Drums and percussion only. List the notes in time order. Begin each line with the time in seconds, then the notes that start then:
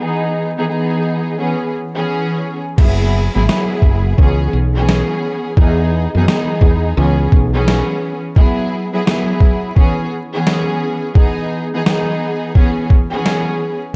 2.78 kick, crash
3.49 snare
3.82 kick
4.18 kick
4.89 snare
5.57 kick
6.28 snare
6.61 kick
7.32 kick
7.68 snare
8.36 kick
9.07 snare
9.40 kick
9.76 kick
10.47 snare
11.15 kick
11.86 snare
12.55 kick
12.90 kick
13.26 snare